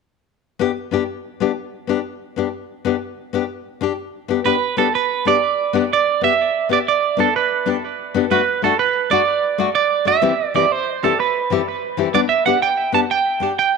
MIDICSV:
0, 0, Header, 1, 4, 480
1, 0, Start_track
1, 0, Key_signature, 1, "major"
1, 0, Tempo, 320513
1, 906, Time_signature, 12, 3, 24, 8
1, 20629, End_track
2, 0, Start_track
2, 0, Title_t, "Clean electric guitar"
2, 0, Program_c, 0, 27
2, 6673, Note_on_c, 0, 71, 70
2, 7156, Note_off_c, 0, 71, 0
2, 7162, Note_on_c, 0, 69, 72
2, 7382, Note_off_c, 0, 69, 0
2, 7415, Note_on_c, 0, 71, 67
2, 7896, Note_off_c, 0, 71, 0
2, 7902, Note_on_c, 0, 74, 83
2, 8867, Note_off_c, 0, 74, 0
2, 8885, Note_on_c, 0, 74, 82
2, 9340, Note_off_c, 0, 74, 0
2, 9346, Note_on_c, 0, 76, 89
2, 10001, Note_off_c, 0, 76, 0
2, 10076, Note_on_c, 0, 74, 86
2, 10151, Note_off_c, 0, 74, 0
2, 10309, Note_on_c, 0, 74, 77
2, 10739, Note_off_c, 0, 74, 0
2, 10785, Note_on_c, 0, 69, 76
2, 11016, Note_off_c, 0, 69, 0
2, 11023, Note_on_c, 0, 71, 72
2, 11511, Note_off_c, 0, 71, 0
2, 12452, Note_on_c, 0, 71, 77
2, 12931, Note_off_c, 0, 71, 0
2, 12937, Note_on_c, 0, 69, 71
2, 13149, Note_off_c, 0, 69, 0
2, 13168, Note_on_c, 0, 71, 75
2, 13607, Note_off_c, 0, 71, 0
2, 13644, Note_on_c, 0, 74, 94
2, 14537, Note_off_c, 0, 74, 0
2, 14604, Note_on_c, 0, 74, 89
2, 15085, Note_off_c, 0, 74, 0
2, 15091, Note_on_c, 0, 76, 92
2, 15803, Note_off_c, 0, 76, 0
2, 15809, Note_on_c, 0, 74, 86
2, 16053, Note_off_c, 0, 74, 0
2, 16053, Note_on_c, 0, 72, 77
2, 16533, Note_on_c, 0, 69, 72
2, 16535, Note_off_c, 0, 72, 0
2, 16745, Note_off_c, 0, 69, 0
2, 16773, Note_on_c, 0, 71, 68
2, 17263, Note_off_c, 0, 71, 0
2, 18189, Note_on_c, 0, 74, 81
2, 18264, Note_off_c, 0, 74, 0
2, 18405, Note_on_c, 0, 76, 76
2, 18637, Note_off_c, 0, 76, 0
2, 18657, Note_on_c, 0, 78, 90
2, 18883, Note_off_c, 0, 78, 0
2, 18905, Note_on_c, 0, 79, 91
2, 19380, Note_off_c, 0, 79, 0
2, 19386, Note_on_c, 0, 81, 92
2, 19460, Note_off_c, 0, 81, 0
2, 19634, Note_on_c, 0, 79, 92
2, 20333, Note_off_c, 0, 79, 0
2, 20351, Note_on_c, 0, 79, 86
2, 20629, Note_off_c, 0, 79, 0
2, 20629, End_track
3, 0, Start_track
3, 0, Title_t, "Nylon-string guitar"
3, 0, Program_c, 1, 24
3, 889, Note_on_c, 1, 59, 64
3, 898, Note_on_c, 1, 62, 68
3, 916, Note_on_c, 1, 67, 81
3, 1042, Note_off_c, 1, 59, 0
3, 1046, Note_off_c, 1, 62, 0
3, 1056, Note_off_c, 1, 67, 0
3, 1364, Note_on_c, 1, 59, 55
3, 1382, Note_on_c, 1, 62, 60
3, 1398, Note_on_c, 1, 67, 63
3, 1520, Note_off_c, 1, 59, 0
3, 1529, Note_off_c, 1, 62, 0
3, 1537, Note_off_c, 1, 67, 0
3, 2100, Note_on_c, 1, 59, 57
3, 2115, Note_on_c, 1, 62, 58
3, 2123, Note_on_c, 1, 67, 60
3, 2249, Note_off_c, 1, 59, 0
3, 2256, Note_off_c, 1, 62, 0
3, 2261, Note_off_c, 1, 67, 0
3, 2805, Note_on_c, 1, 59, 56
3, 2831, Note_on_c, 1, 62, 61
3, 2837, Note_on_c, 1, 67, 58
3, 2962, Note_off_c, 1, 59, 0
3, 2975, Note_off_c, 1, 62, 0
3, 2978, Note_off_c, 1, 67, 0
3, 3537, Note_on_c, 1, 59, 51
3, 3556, Note_on_c, 1, 62, 60
3, 3571, Note_on_c, 1, 67, 57
3, 3689, Note_off_c, 1, 59, 0
3, 3698, Note_off_c, 1, 62, 0
3, 3706, Note_off_c, 1, 67, 0
3, 4262, Note_on_c, 1, 59, 62
3, 4275, Note_on_c, 1, 62, 64
3, 4294, Note_on_c, 1, 67, 60
3, 4412, Note_off_c, 1, 59, 0
3, 4419, Note_off_c, 1, 62, 0
3, 4428, Note_off_c, 1, 67, 0
3, 4986, Note_on_c, 1, 59, 56
3, 4999, Note_on_c, 1, 62, 63
3, 5013, Note_on_c, 1, 67, 62
3, 5134, Note_off_c, 1, 59, 0
3, 5141, Note_off_c, 1, 62, 0
3, 5148, Note_off_c, 1, 67, 0
3, 5714, Note_on_c, 1, 62, 58
3, 5736, Note_on_c, 1, 67, 60
3, 5859, Note_off_c, 1, 62, 0
3, 5869, Note_off_c, 1, 67, 0
3, 6414, Note_on_c, 1, 59, 55
3, 6418, Note_on_c, 1, 62, 56
3, 6445, Note_on_c, 1, 67, 57
3, 6569, Note_off_c, 1, 59, 0
3, 6571, Note_off_c, 1, 62, 0
3, 6584, Note_off_c, 1, 67, 0
3, 6660, Note_on_c, 1, 59, 62
3, 6672, Note_on_c, 1, 62, 68
3, 6687, Note_on_c, 1, 67, 71
3, 6812, Note_off_c, 1, 59, 0
3, 6818, Note_off_c, 1, 62, 0
3, 6825, Note_off_c, 1, 67, 0
3, 7140, Note_on_c, 1, 59, 58
3, 7153, Note_on_c, 1, 62, 62
3, 7162, Note_on_c, 1, 67, 55
3, 7292, Note_off_c, 1, 59, 0
3, 7298, Note_off_c, 1, 62, 0
3, 7303, Note_off_c, 1, 67, 0
3, 7866, Note_on_c, 1, 59, 54
3, 7881, Note_on_c, 1, 62, 62
3, 7901, Note_on_c, 1, 67, 66
3, 8015, Note_off_c, 1, 59, 0
3, 8022, Note_off_c, 1, 62, 0
3, 8033, Note_off_c, 1, 67, 0
3, 8584, Note_on_c, 1, 59, 62
3, 8598, Note_on_c, 1, 62, 65
3, 8613, Note_on_c, 1, 67, 64
3, 8734, Note_off_c, 1, 59, 0
3, 8741, Note_off_c, 1, 62, 0
3, 8748, Note_off_c, 1, 67, 0
3, 9305, Note_on_c, 1, 59, 52
3, 9339, Note_on_c, 1, 67, 57
3, 9454, Note_off_c, 1, 59, 0
3, 9471, Note_off_c, 1, 67, 0
3, 10022, Note_on_c, 1, 59, 54
3, 10035, Note_on_c, 1, 62, 57
3, 10048, Note_on_c, 1, 67, 56
3, 10172, Note_off_c, 1, 59, 0
3, 10179, Note_off_c, 1, 62, 0
3, 10185, Note_off_c, 1, 67, 0
3, 10734, Note_on_c, 1, 59, 57
3, 10756, Note_on_c, 1, 62, 58
3, 10888, Note_off_c, 1, 59, 0
3, 10899, Note_off_c, 1, 62, 0
3, 11466, Note_on_c, 1, 59, 55
3, 11474, Note_on_c, 1, 62, 59
3, 11491, Note_on_c, 1, 67, 57
3, 11614, Note_off_c, 1, 59, 0
3, 11618, Note_off_c, 1, 62, 0
3, 11626, Note_off_c, 1, 67, 0
3, 12196, Note_on_c, 1, 59, 61
3, 12211, Note_on_c, 1, 62, 62
3, 12230, Note_on_c, 1, 67, 56
3, 12339, Note_off_c, 1, 59, 0
3, 12346, Note_off_c, 1, 62, 0
3, 12356, Note_off_c, 1, 67, 0
3, 12438, Note_on_c, 1, 57, 73
3, 12448, Note_on_c, 1, 62, 69
3, 12453, Note_on_c, 1, 66, 74
3, 12580, Note_off_c, 1, 57, 0
3, 12584, Note_off_c, 1, 62, 0
3, 12587, Note_off_c, 1, 66, 0
3, 12913, Note_on_c, 1, 57, 52
3, 12936, Note_on_c, 1, 62, 65
3, 12949, Note_on_c, 1, 66, 61
3, 13056, Note_off_c, 1, 57, 0
3, 13068, Note_off_c, 1, 62, 0
3, 13075, Note_off_c, 1, 66, 0
3, 13628, Note_on_c, 1, 57, 55
3, 13649, Note_on_c, 1, 62, 59
3, 13666, Note_on_c, 1, 66, 69
3, 13774, Note_off_c, 1, 57, 0
3, 13784, Note_off_c, 1, 62, 0
3, 13793, Note_off_c, 1, 66, 0
3, 14350, Note_on_c, 1, 57, 62
3, 14357, Note_on_c, 1, 62, 62
3, 14373, Note_on_c, 1, 66, 72
3, 14494, Note_off_c, 1, 57, 0
3, 14498, Note_off_c, 1, 62, 0
3, 14506, Note_off_c, 1, 66, 0
3, 15053, Note_on_c, 1, 57, 56
3, 15071, Note_on_c, 1, 62, 51
3, 15083, Note_on_c, 1, 66, 58
3, 15206, Note_off_c, 1, 57, 0
3, 15215, Note_off_c, 1, 62, 0
3, 15221, Note_off_c, 1, 66, 0
3, 15297, Note_on_c, 1, 52, 64
3, 15305, Note_on_c, 1, 60, 74
3, 15311, Note_on_c, 1, 64, 76
3, 15320, Note_on_c, 1, 67, 75
3, 15448, Note_off_c, 1, 52, 0
3, 15451, Note_off_c, 1, 60, 0
3, 15454, Note_off_c, 1, 64, 0
3, 15459, Note_off_c, 1, 67, 0
3, 15789, Note_on_c, 1, 52, 61
3, 15800, Note_on_c, 1, 60, 54
3, 15812, Note_on_c, 1, 64, 58
3, 15822, Note_on_c, 1, 67, 59
3, 15933, Note_off_c, 1, 52, 0
3, 15939, Note_off_c, 1, 60, 0
3, 15945, Note_off_c, 1, 64, 0
3, 15949, Note_off_c, 1, 67, 0
3, 16517, Note_on_c, 1, 52, 51
3, 16527, Note_on_c, 1, 60, 55
3, 16534, Note_on_c, 1, 64, 59
3, 16540, Note_on_c, 1, 67, 60
3, 16657, Note_off_c, 1, 52, 0
3, 16662, Note_off_c, 1, 60, 0
3, 16665, Note_off_c, 1, 64, 0
3, 16668, Note_off_c, 1, 67, 0
3, 17226, Note_on_c, 1, 52, 49
3, 17240, Note_on_c, 1, 60, 54
3, 17254, Note_on_c, 1, 64, 58
3, 17257, Note_on_c, 1, 67, 66
3, 17370, Note_off_c, 1, 52, 0
3, 17378, Note_off_c, 1, 60, 0
3, 17385, Note_off_c, 1, 64, 0
3, 17386, Note_off_c, 1, 67, 0
3, 17929, Note_on_c, 1, 52, 57
3, 17944, Note_on_c, 1, 60, 57
3, 17948, Note_on_c, 1, 64, 64
3, 17958, Note_on_c, 1, 67, 65
3, 18082, Note_off_c, 1, 52, 0
3, 18089, Note_off_c, 1, 60, 0
3, 18091, Note_off_c, 1, 64, 0
3, 18096, Note_off_c, 1, 67, 0
3, 18177, Note_on_c, 1, 59, 69
3, 18192, Note_on_c, 1, 62, 76
3, 18325, Note_off_c, 1, 59, 0
3, 18333, Note_off_c, 1, 62, 0
3, 18653, Note_on_c, 1, 59, 53
3, 18672, Note_on_c, 1, 62, 59
3, 18679, Note_on_c, 1, 67, 61
3, 18803, Note_off_c, 1, 59, 0
3, 18812, Note_off_c, 1, 62, 0
3, 18816, Note_off_c, 1, 67, 0
3, 19354, Note_on_c, 1, 59, 54
3, 19367, Note_on_c, 1, 62, 58
3, 19382, Note_on_c, 1, 67, 54
3, 19513, Note_off_c, 1, 59, 0
3, 19519, Note_off_c, 1, 62, 0
3, 19526, Note_off_c, 1, 67, 0
3, 20086, Note_on_c, 1, 62, 58
3, 20105, Note_on_c, 1, 67, 60
3, 20237, Note_off_c, 1, 62, 0
3, 20247, Note_off_c, 1, 67, 0
3, 20629, End_track
4, 0, Start_track
4, 0, Title_t, "Muted nylon-string guitar strokes"
4, 5701, Note_on_c, 9, 29, 63
4, 5851, Note_off_c, 9, 29, 0
4, 10771, Note_on_c, 9, 29, 63
4, 10921, Note_off_c, 9, 29, 0
4, 18199, Note_on_c, 9, 29, 83
4, 18349, Note_off_c, 9, 29, 0
4, 20068, Note_on_c, 9, 29, 54
4, 20217, Note_off_c, 9, 29, 0
4, 20629, End_track
0, 0, End_of_file